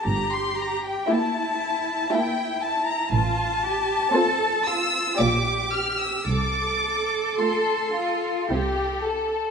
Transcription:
X:1
M:3/4
L:1/16
Q:1/4=57
K:F
V:1 name="Violin section"
b c' b g a4 g2 a b | a6 e'2 d'2 f' e' | d'4 c'4 z4 |]
V:2 name="Violin section"
z4 [Ee]4 [Ee]4 | z4 [Ac]4 [Gd]4 | z4 A2 F2 G2 A2 |]
V:3 name="Cello section"
G4 E8 | F2 G2 A2 F2 G4 | A8- A2 z2 |]
V:4 name="Viola section"
z4 [B,E]4 [B,E]4 | z4 [CF]4 [B,F]4 | z4 [A,F]4 [CE]4 |]
V:5 name="Double bass section" clef=bass
G,,,4 z8 | A,,,4 z4 B,,,4 | C,,4 z4 C,,4 |]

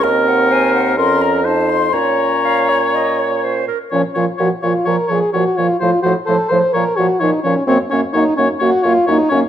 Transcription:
X:1
M:4/4
L:1/8
Q:1/4=127
K:Bbm
V:1 name="Flute"
e g a g c' b =a c' | b6 z2 | f f f f f f f f | f f f f f f f f |
g g g g g g g g |]
V:2 name="Oboe"
B4 B2 c2 | d6- d z | d d d d d d d d | c c c c d d d d |
d d d d d d d d |]
V:3 name="French horn"
C4 D2 E2 | D6- D z | D F G F B A G F | F G =A c B G E D |
C D E D G F E D |]
V:4 name="Clarinet"
B2 c2 B2 c2 | d2 f d e d c B | F, F, F, F, F, F, F, F, | F, F, F, F, F, F, F, F, |
B, B, B, B, B, B, B, B, |]
V:5 name="Bassoon" clef=bass
E,,4 F,,4 | B,,6- B,, z | B,, B,, B,, B,, B,, B,, B,, B,, | =A,, A,, A,, A,, B,, B,, B,, B,, |
G,, G,, G,, G,, G,, G,, G,, G,, |]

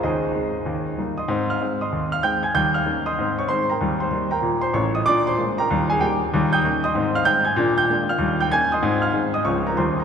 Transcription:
X:1
M:4/4
L:1/8
Q:"Swing" 1/4=191
K:Ab
V:1 name="Grand piano"
[Ace]6 z [ec'e']- | [ec'e'] [ff']2 [ec'e']2 [ff'] [gg'] [aa'] | [gg'] [ff']2 [ec'e']2 [dd'] [cc'] [Bgb]- | [Bgb] [cc']2 [Bgb]2 [cc'] [dd'] [ee'] |
[=d=d'] [cc']2 [Bgb]2 [Aa] [Gg] z | z [ge'g']2 [ec'e']2 [ff'] [gg'] [aa'] | z [gg']2 [ff']2 [gg'] [aa'] [ec'e']- | [ec'e'] [ff']2 [ee'] [dd'] [Bb] [cc'] b |]
V:2 name="Grand piano"
[E,,E,]2 [A,CE]2 [E,,E,]2 [G,B,E]2 | [A,,C]2 [A,CE]2 E,,2 [A,CE]2 | [E,,G,]2 [B,DE]2 [A,,C]2 [A,CE]2 | [E,,G,]2 [G,B,E]2 B,,2 [=A,,,=A,,]2 |
[B,,=D]2 [A,B,F]2 [E,,G,]2 [G,B,E]2 | [E,,G,]2 [B,DE]2 [A,,C]2 [A,CE]2 | [B,,=D]2 [A,B,D]2 [E,,G,]2 [B,_DE]2 | [A,,C]2 [A,CE]2 [D,,F,A,CF]2 [E,,G,DE]2 |]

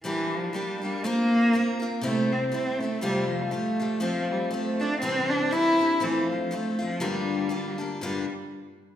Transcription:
X:1
M:2/4
L:1/16
Q:"Swing" 1/4=120
K:Gdor
V:1 name="Steel-string acoustic guitar"
[G,B,DG]4 [G,B,DG]2 [B,DG]2 | [B,CFB]4 [B,CFB]2 [CFB]2 | [C,G,A,CE]4 [G,A,CE]2 [A,CE]2 | [F,,C,F,G,A,F]4 [F,G,A,F]2 [F,G,A,F]2 |
[F,A,CF]4 [F,A,CF]2 [A,CF]2 | [C,E,G,CD]4 [E,G,CD]2 [G,CD]2 | [F,A,CF]4 [F,A,CF]2 [A,CF]2 | [G,,D,G,B,DF]4 [G,B,DF]2 [G,B,DF]2 |
[G,,D,G,B,DF]2 z6 |]
V:2 name="Cello" clef=bass
E,2 F,2 G,2 G,2 | B,6 z2 | A,2 C2 C2 A,2 | G,2 F, G, A,4 |
F,2 G,2 A,2 D2 | C2 D2 E4 | E,2 F, F, A,2 F,2 | G,6 z2 |
G,2 z6 |]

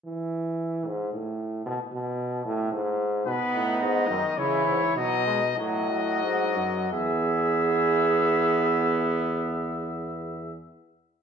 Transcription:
X:1
M:3/4
L:1/8
Q:1/4=100
K:E
V:1 name="Trumpet"
z6 | z6 | B2 d2 c2 | d2 d4 |
e6- | e6 |]
V:2 name="Flugelhorn"
z6 | z6 | D4 E2 | D2 F4 |
G6- | G6 |]
V:3 name="Trombone" clef=bass
z6 | z6 | B,3 D, E,2 | F, G, F, F,3 |
B,6- | B,6 |]
V:4 name="Bass trombone" clef=bass
E,3 G,, A,,2 | B,, B,,2 A,, G,,2 | B,, A,, G,, F,, C, G,, | B,,2 A,,2 G,, F,, |
E,,6- | E,,6 |]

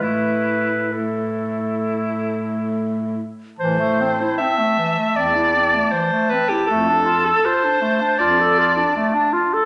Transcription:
X:1
M:4/4
L:1/16
Q:1/4=78
K:Am
V:1 name="Alto saxophone"
E4 E8- E2 z2 | c4 e4 d4 c2 B G | A4 c4 d6 z2 |]
V:2 name="Clarinet"
B4 A8- A2 z2 | a16- | a16 |]
V:3 name="Clarinet"
A,4 A,8- A,2 z2 | E, A, C E C A, E, A, C E C A, E, A, C E | A, D F A F D A, D F A F D A, D F A |]
V:4 name="Baritone saxophone" clef=bass
A,,12- A,,2 z2 | A,,4 z4 E,,4 z4 | F,,4 z4 F,,4 z4 |]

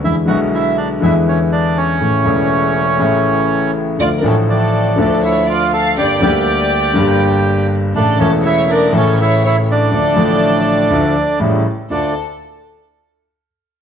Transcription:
X:1
M:4/4
L:1/16
Q:1/4=122
K:Dm
V:1 name="Violin section"
z16 | z16 | d3/2 B/2 A2 A4 A2 ^c2 d2 f2 | d2 d12 z2 |
A2 A2 ^c2 B2 A2 c2 c2 A2- | A12- A2 z2 | A2 z12 z2 |]
V:2 name="Bandoneon"
E2 ^F2 E2 D2 E2 ^C2 D2 C2- | ^C12- C2 z2 | F3/2 D/2 ^C2 D4 D2 E2 F2 A2 | G2 G12 z2 |
D2 ^C2 E2 D2 C2 E2 E2 D2- | D12 z4 | D2 z12 z2 |]
V:3 name="Grand piano" clef=bass
[E,,D,E,^G,=B,E]2 [=B,,,=B,,D,G,B,E]6 [E,,D,E,G,B,E]8 | [A,,,A,,^C,E,A,E]2 [E,,,E,,C,E,A,E]6 [A,,,A,,C,E,A,E]8 | [D,,D,F,A,E]2 [A,,,A,,D,F,A,E]6 [D,,D,F,A,E]8 | [G,,,G,,D,G,B,G]2 [D,,D,G,B,G]6 [G,,,G,,D,G,B,G]8 |
[A,,,A,,^C,E,A,E]2 [E,,,E,,C,E,A,E]6 [A,,,A,,C,E,A,E]8 | [D,,D,F,A,E]2 [A,,,A,,D,F,A,E]6 [D,,D,F,A,E]2 z2 [A,,,A,,^C,G,A,E]2 z2 | [D,,DEF]2 z12 z2 |]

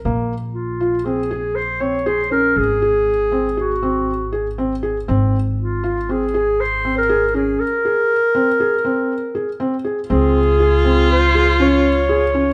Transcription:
X:1
M:5/4
L:1/16
Q:1/4=120
K:Bbm
V:1 name="Clarinet"
z4 F4 A4 c2 d2 c2 B2 | A8 G6 z6 | z4 F4 A4 c3 B3 A2 | B16 z4 |
A8 c4 d8 |]
V:2 name="Viola"
z16 z4 | z16 z4 | z16 z4 | z16 z4 |
F16- F4 |]
V:3 name="Felt piano"
B,4 z2 F2 C2 A4 C2 A2 D2- | D2 A4 C2 A2 C4 A2 C2 A2 | C4 z2 F2 C2 A4 C2 A2 D2- | D2 A4 C2 A2 C4 A2 C2 A2 |
C4 A2 C4 A2 D4 A2 D2 |]
V:4 name="Upright bass" clef=bass
B,,,16- B,,,4 | A,,,16- A,,,4 | A,,,16- A,,,4 | z16 z4 |
D,,16- D,,4 |]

